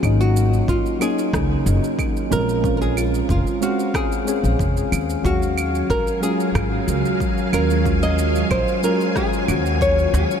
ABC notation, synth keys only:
X:1
M:4/4
L:1/8
Q:1/4=92
K:Ebdor
V:1 name="Synth keys"
[G,B,DE]3 [G,B,DE]4 [A,CDF] | [A,CDF]3 [A,CDf]2 [A,CDA]3 | [G,A,Df]3 [G,A,DF]4 [G,A,DF] | [G,A,DF]3 [G,A,DF]2 [G,A,DG]3 |]